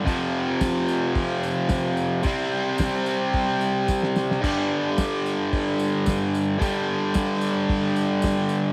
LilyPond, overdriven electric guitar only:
\new Staff \with { instrumentName = "Overdriven electric guitar" } { \clef bass \time 4/4 \key f \lydian \tempo 4 = 110 <f, c f>1 | <c g c'>1 | <g, d g>1 | <g, d g>1 | }